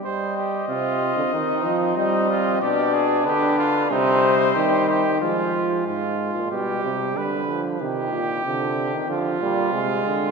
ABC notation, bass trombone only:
X:1
M:4/4
L:1/16
Q:1/4=93
K:Cm
V:1 name="Bass trombone" clef=bass
z4 C,3 D, E,2 F,2 G,4 | =B,,4 D,4 C,4 E,4 | F,4 A,,3 B,, =B,,2 C,2 D,4 | C,2 B,,2 C,4 D,2 B,,2 C,2 D,2 |]